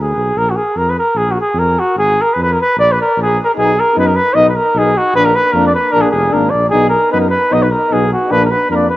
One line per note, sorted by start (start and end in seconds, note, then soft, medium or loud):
0.00 0.15 D2 medium
0.00 0.39 G#4 medium
0.15 0.34 B1 medium
0.35 0.57 A#1 medium
0.35 0.51 A#4 loud
0.50 0.57 F#4 medium
0.56 0.78 G#4 medium
0.75 0.97 F2 medium
0.75 0.91 A#4 medium
0.90 0.98 B4 medium
0.98 1.18 A#4 medium
1.14 1.37 A#1 medium
1.14 1.33 G#4 medium
1.31 1.39 F#4 medium
1.41 1.60 G#4 medium
1.54 1.76 F2 medium
1.59 1.80 A#4 medium
1.79 1.97 F#4 medium
1.96 2.18 G#1 medium
1.96 2.23 G#4 loud
2.21 2.34 A#4 medium
2.33 2.58 F2 medium
2.33 2.40 B4 medium
2.42 2.54 B4 medium
2.52 2.59 A#4 medium
2.61 2.77 B4 loud
2.76 2.98 A#1 medium
2.76 2.93 D5 loud
2.92 2.99 B4 medium
3.01 3.17 A#4 medium
3.17 3.38 A#1 medium
3.22 3.38 G#4 medium
3.44 3.51 A#4 medium
3.56 3.78 B1 medium
3.56 3.72 B3 medium
3.56 3.72 D#4 medium
3.56 3.81 G#4 loud
3.80 3.97 A#4 medium
3.94 4.18 F#2 medium
3.94 4.10 B3 medium
3.94 4.12 D#4 medium
3.99 4.09 B4 medium
4.07 4.17 A#4 medium
4.16 4.36 B4 loud
4.35 4.57 B1 medium
4.35 4.52 B3 medium
4.35 4.51 D#4 medium
4.35 4.45 D#5 loud
4.49 4.57 B4 medium
4.56 4.80 A#4 medium
4.74 4.96 B1 medium
4.74 4.93 B3 medium
4.74 4.92 D#4 medium
4.78 4.99 G#4 loud
4.97 5.15 F#4 loud
5.14 5.36 A#1 medium
5.14 5.31 A#3 medium
5.14 5.32 D4 medium
5.14 5.26 B4 loud
5.25 5.37 A#4 medium
5.35 5.54 B4 loud
5.52 5.75 F2 medium
5.52 5.69 A#3 medium
5.52 5.71 D4 medium
5.52 5.63 A#4 medium
5.66 5.74 D5 medium
5.75 5.93 B4 medium
5.92 6.04 A#1 medium
5.92 6.10 A#3 medium
5.92 6.08 D4 medium
5.92 6.03 A#4 loud
6.01 6.11 G#4 medium
6.11 6.30 F1 medium
6.11 6.34 G#4 medium
6.31 6.50 G#1 medium
6.31 6.49 A#3 medium
6.31 6.47 D4 medium
6.31 6.52 A#4 medium
6.50 6.70 A#1 medium
6.50 6.69 D5 medium
6.70 6.89 B3 medium
6.70 6.88 D#4 medium
6.70 6.89 G#4 loud
6.74 6.95 B1 medium
6.90 7.09 A#4 loud
7.12 7.35 F#2 medium
7.12 7.27 B3 medium
7.12 7.28 D#4 medium
7.12 7.20 B4 loud
7.20 7.30 A#4 medium
7.30 7.54 B4 medium
7.51 7.74 B1 medium
7.51 7.67 B3 medium
7.51 7.67 D#4 medium
7.51 7.64 D#5 loud
7.62 7.73 B4 medium
7.72 7.94 A#4 medium
7.90 8.13 B1 medium
7.90 8.07 B3 medium
7.90 8.06 D#4 medium
7.90 8.11 G#4 loud
8.13 8.33 F#4 medium
8.29 8.53 A#1 loud
8.29 8.46 A#3 medium
8.29 8.45 D4 medium
8.29 8.40 B4 loud
8.45 8.52 A#4 medium
8.51 8.70 B4 medium
8.70 8.91 F2 medium
8.70 8.87 A#3 medium
8.70 8.86 D4 medium
8.70 8.75 A#4 medium
8.76 8.86 D5 medium
8.90 8.97 B4 medium